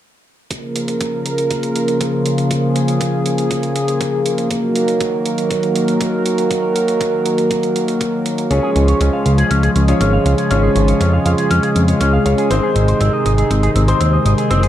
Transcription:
0.51 C#3 F3 A#3 F4 A#4, kick, closed hi-hat
0.76 closed hi-hat
0.88 closed hi-hat
1.01 kick, closed hi-hat
1.26 closed hi-hat
1.38 closed hi-hat
1.51 kick, closed hi-hat
1.63 closed hi-hat
1.76 closed hi-hat
1.88 closed hi-hat
2.01 kick, closed hi-hat
2.26 closed hi-hat
2.38 closed hi-hat
2.51 G#4, kick, closed hi-hat
2.76 closed hi-hat
2.88 closed hi-hat
3.01 kick, closed hi-hat
3.26 closed hi-hat
3.38 closed hi-hat
3.51 kick, closed hi-hat
3.63 closed hi-hat
3.76 closed hi-hat
3.88 closed hi-hat
4.01 kick, closed hi-hat
4.26 closed hi-hat
4.38 closed hi-hat
4.51 D#3 F#3 F#4 A#4, kick, closed hi-hat
4.76 closed hi-hat
4.88 closed hi-hat
5.01 kick, closed hi-hat
5.26 closed hi-hat
5.38 closed hi-hat
5.51 kick, closed hi-hat
5.63 closed hi-hat
5.76 closed hi-hat
5.88 closed hi-hat
6.01 kick, closed hi-hat
6.26 closed hi-hat
6.38 closed hi-hat
6.51 kick, closed hi-hat
6.76 closed hi-hat
6.88 closed hi-hat
7.01 kick, closed hi-hat
7.26 closed hi-hat
7.38 closed hi-hat
7.51 kick, closed hi-hat
7.63 closed hi-hat
7.76 closed hi-hat
7.88 closed hi-hat
8.01 kick, closed hi-hat
8.26 closed hi-hat
8.38 closed hi-hat
8.51 C#2 C#3 F3 G#3 C#4 F4 G#4 C#5, kick, closed hi-hat
8.63 G#4
8.76 C#2 C#4, closed hi-hat
8.88 C#5, closed hi-hat
9.01 C#2 C#4, kick, closed hi-hat
9.13 F5
9.26 C#2 F5, closed hi-hat
9.38 G#4, closed hi-hat
9.51 C#2 C#4, kick, closed hi-hat
9.63 G#4, closed hi-hat
9.76 C#2 C#4, closed hi-hat
9.88 C#4 F4 G#4 C#5, closed hi-hat
10.01 G#1 C#4, kick, closed hi-hat
10.13 F5
10.26 C#2 F5, closed hi-hat
10.38 G#4, closed hi-hat
10.51 G#1 C#4 F4 G#4 C#5, kick, closed hi-hat
10.63 G#4
10.76 G#1 C#4, closed hi-hat
10.88 C#5, closed hi-hat
11.01 F2 C#4, kick, closed hi-hat
11.13 F5
11.26 F2 F5, closed hi-hat
11.38 G#4, closed hi-hat
11.51 F2 C#4, kick, closed hi-hat
11.63 G#4, closed hi-hat
11.76 F2 C#4, closed hi-hat
11.88 C#5, closed hi-hat
12.01 C#2 C#4, kick, closed hi-hat
12.13 F5
12.26 C#2 C#4 F4 G#4 C#5 F5, closed hi-hat
12.38 G#4, closed hi-hat
12.51 G#1 C3 D#3 C4 D#4 G#4 C5, kick, closed hi-hat
12.63 G#4
12.76 G#1 C4, closed hi-hat
12.88 C5, closed hi-hat
13.01 G#1 C4, kick, closed hi-hat
13.13 D#5
13.26 G#1 D#5, closed hi-hat
13.38 G#4, closed hi-hat
13.51 G#1 C4, kick, closed hi-hat
13.63 G#4, closed hi-hat
13.76 G#1 C4, closed hi-hat
13.88 C4 D#4 G#4 C5, closed hi-hat
14.01 D#2 C4, kick, closed hi-hat
14.13 D#5
14.25 G#1 D#5, closed hi-hat
14.38 G#4, closed hi-hat
14.51 F#1 C4 D#4 F4 G#4 C5, kick, closed hi-hat
14.63 G#4, closed hi-hat

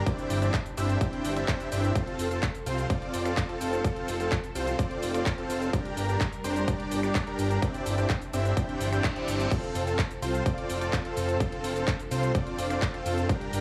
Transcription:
Already playing: D4
0.06 E3 C4 D4 E4 G4 D5, kick, closed hi-hat, shaker
0.18 closed hi-hat, shaker
0.30 G1, open hi-hat, shaker
0.42 C4 D4 E4 G4 D5, closed hi-hat, shaker
0.54 kick, clap, closed hi-hat, shaker
0.66 closed hi-hat, shaker
0.77 G1 C4 D4 E4 G4 E5, open hi-hat, shaker
0.89 closed hi-hat, shaker
1.01 C4 D4 E4 G4 G5, kick, closed hi-hat, shaker
1.13 closed hi-hat
1.25 G1, open hi-hat, shaker
1.36 C4 D4 E4 G4 E5, finger snap, closed hi-hat, shaker
1.48 kick, clap, closed hi-hat, shaker
1.60 closed hi-hat, shaker
1.72 G1 C4 D4 E4 G4 E5, open hi-hat, shaker
1.84 closed hi-hat, shaker
1.95 F3 C4 F4 A4, kick, closed hi-hat, shaker
2.07 closed hi-hat
2.19 F1, open hi-hat, shaker
2.31 C4 F4 A4, closed hi-hat, shaker
2.43 kick, clap, closed hi-hat, shaker
2.55 closed hi-hat, shaker
2.66 C2 C4 F4 C5, open hi-hat, shaker
2.78 closed hi-hat, shaker
2.90 C4 F4 D5, kick, closed hi-hat, shaker
3.02 closed hi-hat
3.14 F1, open hi-hat, shaker
3.25 C4 F4 D5, finger snap, closed hi-hat, shaker
3.37 kick, clap, closed hi-hat, shaker
3.49 C4 F4 A4, closed hi-hat
3.61 F1, open hi-hat, shaker
3.73 closed hi-hat, shaker
3.84 F4 A4, kick, closed hi-hat, shaker
3.96 closed hi-hat
4.08 F1, open hi-hat, shaker
4.20 C4 F4 A4, closed hi-hat, shaker
4.32 kick, clap, closed hi-hat, shaker
4.44 closed hi-hat, shaker
4.55 C2 C4 F4 C5, open hi-hat, shaker
4.67 closed hi-hat, shaker
4.79 C4 F4 D5, kick, closed hi-hat, shaker
4.91 closed hi-hat
5.03 F1, open hi-hat, shaker
5.14 C4 F4 D5, finger snap, closed hi-hat, shaker
5.26 kick, clap, closed hi-hat, shaker
5.38 C4 F4 A4, closed hi-hat
5.50 F1, open hi-hat, shaker
5.62 closed hi-hat, shaker
5.73 G3 D4 G4 A#4, kick, closed hi-hat, shaker
5.85 closed hi-hat
5.97 G1, open hi-hat, shaker
6.09 D4 G4 A#4, closed hi-hat, shaker
6.21 kick, clap, closed hi-hat, shaker
6.33 closed hi-hat, shaker
6.44 F1 D4 G4 C5, open hi-hat, shaker
6.56 closed hi-hat, shaker
6.68 D4 G4 D5, kick, closed hi-hat, shaker
6.80 closed hi-hat
6.91 G1, open hi-hat, shaker
7.03 D4 G4 D5, finger snap, closed hi-hat, shaker
7.15 kick, clap, closed hi-hat, shaker
7.27 D4 G4 A#4, closed hi-hat
7.39 G1, open hi-hat, shaker
7.51 closed hi-hat, shaker
7.62 E3 C4 D4 E4 G4 D5, finger snap, kick, closed hi-hat, shaker
7.74 closed hi-hat, shaker
7.86 G1, open hi-hat, shaker
7.98 C4 D4 E4 G4 D5, closed hi-hat, shaker
8.10 kick, clap, closed hi-hat, shaker
8.22 closed hi-hat, shaker
8.33 G1 C4 D4 E4 G4 E5, open hi-hat, shaker
8.45 closed hi-hat, shaker
8.57 C4 D4 E4 G4 G5, kick, closed hi-hat, reverse cymbal, shaker
8.69 closed hi-hat
8.81 G1, open hi-hat, shaker
8.92 C4 D4 E4 G4 G5, finger snap, closed hi-hat, shaker
9.04 kick, clap, closed hi-hat, shaker
9.16 C4 D4 E4 G4 D5, closed hi-hat
9.28 G1, open hi-hat, shaker
9.40 closed hi-hat, shaker
9.51 F3 C4 A4, kick, closed hi-hat, crash, shaker
9.63 closed hi-hat
9.75 F1, open hi-hat, shaker
9.87 C4 F4 A4, closed hi-hat, shaker
9.99 kick, clap, closed hi-hat, shaker
10.11 closed hi-hat, shaker
10.22 C2 C4 F4 C5, open hi-hat, shaker
10.34 closed hi-hat, shaker
10.46 C4 D5, kick, closed hi-hat, shaker
10.58 closed hi-hat
10.70 F1, open hi-hat, shaker
10.81 C4 F4 D5, finger snap, closed hi-hat, shaker
10.93 kick, clap, closed hi-hat, shaker
11.05 C4 F4 A4, closed hi-hat
11.17 F1, open hi-hat, shaker
11.29 closed hi-hat, shaker
11.40 C4 D4 F4 A4, kick, closed hi-hat, shaker
11.52 closed hi-hat
11.64 F1, open hi-hat, shaker
11.76 C4 F4 A4, closed hi-hat, shaker
11.88 kick, clap, closed hi-hat, shaker
11.99 closed hi-hat, shaker
12.11 C2 C4 F4 C5, open hi-hat, shaker
12.23 closed hi-hat, shaker
12.35 C4 F4 D5, kick, closed hi-hat, shaker
12.47 closed hi-hat
12.58 F1, open hi-hat, shaker
12.70 C4 F4 D5, finger snap, closed hi-hat, shaker
12.82 kick, clap, closed hi-hat, shaker
12.94 C4 F4 A4, closed hi-hat
13.06 F1, open hi-hat, shaker
13.18 closed hi-hat, shaker
13.29 G3 D4 A#4, kick, closed hi-hat, shaker
13.41 closed hi-hat
13.53 G1, open hi-hat, shaker

